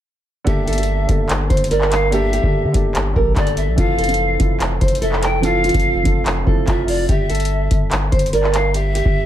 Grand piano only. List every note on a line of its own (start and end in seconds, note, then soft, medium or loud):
0.44 0.70 D3 loud
0.44 0.71 A#3 medium
0.44 0.71 G4 medium
0.44 0.72 A4 loud
0.76 1.01 D3 medium
0.76 1.02 A#3 medium
0.76 1.03 G4 medium
0.76 1.03 A4 medium
1.07 1.73 D3 medium
1.07 1.74 A#3 medium
1.07 1.74 G4 medium
1.07 1.75 A4 medium
2.10 2.36 D3 loud
2.10 2.36 A#3 medium
2.10 2.37 G4 medium
2.10 2.38 A4 loud
2.41 2.67 D3 medium
2.41 2.67 A#3 medium
2.41 2.68 G4 medium
2.41 2.69 A4 medium
2.72 3.06 D3 medium
2.72 3.06 A#3 medium
2.72 3.07 G4 medium
2.72 3.08 A4 medium
3.13 3.63 D3 medium
3.13 3.64 A#3 medium
3.13 3.65 G4 medium
3.13 3.65 A4 medium
3.76 4.01 E3 loud
3.76 4.02 C4 medium
3.76 4.03 F4 medium
3.76 4.03 A4 loud
4.07 4.32 E3 medium
4.07 4.33 C4 medium
4.07 4.34 F4 medium
4.07 4.34 A4 medium
4.38 5.05 C4 medium
4.38 5.04 E4 medium
4.38 5.05 F4 medium
4.38 5.06 A4 medium
5.41 5.66 E3 medium
5.41 5.67 C4 medium
5.41 5.68 F4 medium
5.41 5.68 A4 loud
5.72 5.98 E3 medium
5.72 5.98 C4 medium
5.72 5.99 F4 medium
5.72 6.00 A4 medium
6.03 6.37 F3 medium
6.03 6.37 C4 medium
6.03 6.38 F4 medium
6.03 6.39 A4 medium
6.45 6.95 C4 medium
6.45 6.94 E4 medium
6.45 6.96 F4 medium
6.45 6.96 A4 medium